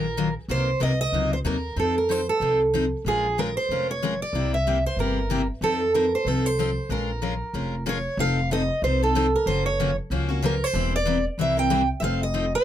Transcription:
Already playing: A#1 A#4
0.17 D#3 F#3 A#3 F4
0.48 C2 C3 F#3 A#3 D#4 A#4 C5
0.80 C2 C3 F#3 A#3 D#4 A#4 D#5
1.01 D#5
1.12 C#2 C3 F#3 A#3 D#4 A#4
1.33 C5
1.44 D#2 C3 F#3 A#3 D#4 A#4
1.76 F2 F3 C4 D#4 A4
1.98 A#4
2.09 F3 C4 D#4 A4 C5
2.29 A4
2.40 C2 F3 C4 D#4 A4
2.74 F3 C4 D#4 A4
3.05 A#1 F3 G#3 C#4 F4 G#4 A#4
3.38 F3 G#3 C#4 F4 A#4
3.57 C5
3.69 F1 F3 G#3 C#4 F4 A#4
3.91 C#5
4.03 F3 G#3 C#4 F4 A#4
4.22 D5
4.33 C2 C3 G3 A#3 E4 G4
4.54 E5
4.67 C3 G3 A#3 E4 G4
4.86 C5
4.96 G1 C3 G3 A#3 E4 G4 A#4
5.30 C3 G3 A#3 E4 G4
5.61 F2 F3 C4 D#4 A4
5.94 F3 C4 D#4 A4 A#4
6.15 C5
6.25 C2 F3 C4 D#4 A4
6.46 C5
6.59 F3 C4 D#4 A4
6.89 A#1 F3 G#3 C#4 F4 A#4
7.22 F3 G#3 C#4 F4 A#4
7.54 F1 F3 G#3 C#4 F4 A#4
7.86 F3 G#3 C#4 F4 A#4 C#5
8.17 F1 F3 C4 D#4 A4 F5
8.51 F3 C4 D#4 A4 D#5
8.82 C2 F3 C4 D#4 A4 C5
9.03 C4 D#4 A4
9.15 F3 C4 D#4 A4
9.36 A#4
9.46 F#1 C#3 F3 A#3 C#4 F#4 C5
9.66 C#5
9.80 C#3 F3 A#3 C#4 F#4
10.10 C#2 C#3 F3 A#3 C#4 F#4
10.29 A#3 C#4 F#4
10.43 C#3 F3 A#3 C#4 F#4 A#4
10.64 C5
10.74 E1 E3 G3 C4 E4 A#4
10.96 D5
11.05 E3 G3 C4 E4 A#4
11.38 C2 E3 G3 C4 E4 A#4 E5
11.57 C4 E4 A#4 G5
11.70 E3 G3 C4 E4 A#4
12.00 F1 F3 C4 D#4 A4 E5 F5
12.23 D#5
12.34 F3 C4 D#4 A4
12.55 C5

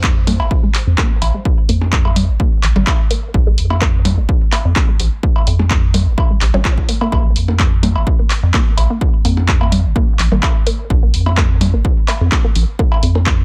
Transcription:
Already playing: F2
0.04 kick, clap
0.27 A#3, open hi-hat, percussion blips
0.40 G#1, cowbell
0.51 kick
0.63 G#3
0.75 clap, open hi-hat
0.87 F2
0.98 A#3, kick, clap, percussion blips
1.22 A#1, open hi-hat, cowbell
1.34 G#3
1.45 kick
1.69 F2 A#3, open hi-hat
1.81 percussion blips
1.93 kick, clap
2.05 G#3, cowbell
2.16 open hi-hat, percussion blips
2.29 G#1
2.40 A#3, kick
2.63 A#1, clap, open hi-hat
2.76 G#1 G#3, percussion blips
2.87 kick, clap, cowbell
3.11 A#3, open hi-hat
3.34 A#1, kick
3.47 G#3
3.58 F2, open hi-hat
3.70 cowbell, percussion blips
3.82 A#3, kick, clap
4.05 open hi-hat, percussion blips
4.18 G#1 G#3
4.29 kick
4.52 A#3, clap, open hi-hat, cowbell
4.65 F2
4.76 kick, clap, percussion blips
4.89 G#3
5.00 A#1, open hi-hat
5.23 A#3, kick
5.36 cowbell
5.47 F2, open hi-hat
5.59 G#3, percussion blips
5.71 kick, clap
5.94 A#3, open hi-hat, percussion blips
6.07 G#1
6.18 kick, cowbell
6.30 G#3
6.41 A#1, clap, open hi-hat
6.54 G#1 C#4, percussion blips
6.65 F4, kick, clap
6.78 kick
6.89 A#3, open hi-hat
7.01 A#3, cowbell
7.12 A#1 A#3, kick, cowbell
7.36 F2, open hi-hat
7.48 A#3, percussion blips
7.59 kick, clap
7.83 A#3, open hi-hat, percussion blips
7.96 G#1, cowbell
8.07 kick
8.19 A#3
8.30 clap, open hi-hat
8.43 F2
8.54 A#3, kick, clap, percussion blips
8.77 A#1, open hi-hat, cowbell
8.90 A#3
9.01 kick
9.25 F2 A#3, open hi-hat
9.37 percussion blips
9.48 kick, clap
9.61 A#3, cowbell
9.72 open hi-hat, percussion blips
9.85 G#1
9.96 A#3, kick
10.19 A#1, clap, open hi-hat
10.32 G#1 A#3, percussion blips
10.43 kick, clap, cowbell
10.67 A#3, open hi-hat
10.90 A#1, kick
11.03 A#3
11.14 F2, open hi-hat
11.26 cowbell, percussion blips
11.37 A#3, kick, clap
11.61 open hi-hat, percussion blips
11.74 G#1 A#3
11.85 kick
12.08 A#3, clap, open hi-hat, cowbell
12.21 F2
12.32 kick, clap, percussion blips
12.44 A#3
12.55 A#1, open hi-hat
12.79 A#3, kick
12.92 cowbell
13.03 F2, open hi-hat
13.15 A#3, percussion blips
13.26 kick, clap

